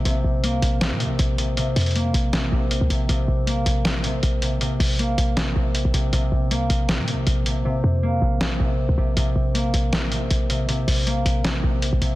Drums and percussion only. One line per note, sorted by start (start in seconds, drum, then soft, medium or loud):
0.05 closed hi-hat medium
0.44 closed hi-hat medium
0.62 closed hi-hat medium
0.81 snare loud
0.81 closed hi-hat medium
1.00 closed hi-hat medium
1.19 closed hi-hat medium
1.38 closed hi-hat medium
1.57 closed hi-hat medium
1.76 closed hi-hat medium
1.76 open hi-hat medium
1.81 closed hi-hat medium
1.86 closed hi-hat medium
1.91 closed hi-hat soft
1.96 closed hi-hat medium
2.14 closed hi-hat medium
2.33 snare loud
2.33 closed hi-hat medium
2.71 closed hi-hat medium
2.90 closed hi-hat medium
3.09 closed hi-hat medium
3.47 closed hi-hat medium
3.66 closed hi-hat medium
3.85 snare loud
3.85 closed hi-hat medium
4.04 closed hi-hat medium
4.23 closed hi-hat medium
4.42 closed hi-hat medium
4.61 closed hi-hat medium
4.80 open hi-hat medium
4.99 closed hi-hat medium
5.18 closed hi-hat medium
5.37 snare loud
5.37 closed hi-hat medium
5.75 closed hi-hat medium
5.94 closed hi-hat medium
6.13 closed hi-hat medium
6.51 closed hi-hat medium
6.70 closed hi-hat medium
6.89 snare loud
6.89 closed hi-hat medium
7.08 closed hi-hat medium
7.27 closed hi-hat medium
7.46 closed hi-hat medium
8.41 snare loud
9.17 closed hi-hat medium
9.55 closed hi-hat medium
9.74 closed hi-hat medium
9.93 snare loud
9.93 closed hi-hat medium
10.12 closed hi-hat medium
10.31 closed hi-hat medium
10.50 closed hi-hat medium
10.69 closed hi-hat medium
10.88 open hi-hat medium
11.07 closed hi-hat medium
11.26 closed hi-hat medium
11.44 snare loud
11.44 closed hi-hat medium
11.82 closed hi-hat medium
12.02 closed hi-hat medium